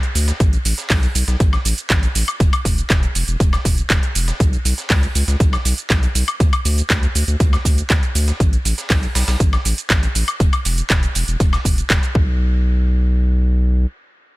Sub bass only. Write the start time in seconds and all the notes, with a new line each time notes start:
0.15 D2
0.40 A1
0.65 A1
0.90 B1
1.15 B1
1.28 B1
1.40 A1
1.65 A1
1.90 A1
2.15 A1
2.40 E1
2.65 E1
2.90 E1
3.15 E1
3.28 E1
3.40 E1
3.65 E1
3.90 E1
4.15 E1
4.40 B1
4.65 B1
4.90 C#2
5.15 C#2
5.28 C#2
5.40 B1
5.65 B1
5.90 B1
6.15 B1
6.40 D2
6.65 D2
6.90 D2
7.15 D2
7.28 D2
7.40 D2
7.65 D2
7.90 D2
8.15 D2
8.40 A1
8.65 A1
8.90 B1
9.15 B1
9.28 B1
9.40 A1
9.65 A1
9.90 A1
10.15 A1
10.40 E1
10.65 E1
10.90 E1
11.15 E1
11.28 E1
11.40 E1
11.65 E1
11.90 E1
12.15 B1